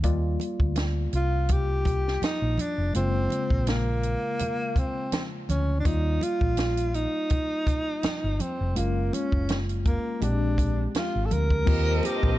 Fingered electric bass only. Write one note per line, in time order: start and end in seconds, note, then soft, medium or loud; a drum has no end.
0.04 0.36 D#2 medium
0.60 1.06 D2 medium
1.13 2.18 C2 medium
2.22 muted fingered electric bass stroke soft
2.42 2.56 A#1 medium
2.78 2.93 F1 medium
2.95 3.27 F#1 medium
3.51 4.14 A#1 medium
5.49 5.81 D2 medium
5.86 6.17 D#2 medium
6.41 7.05 A#1 medium
8.05 muted fingered electric bass stroke soft
8.24 8.38 G1 medium
8.61 8.75 F1 medium
8.77 9.09 F#1 medium
9.33 9.96 F#1 medium
10.22 10.86 A#1 medium
11.15 11.29 G#1 medium
11.31 11.63 D2 medium
11.68 11.99 D#2 loud
12.24 12.39 A#1 medium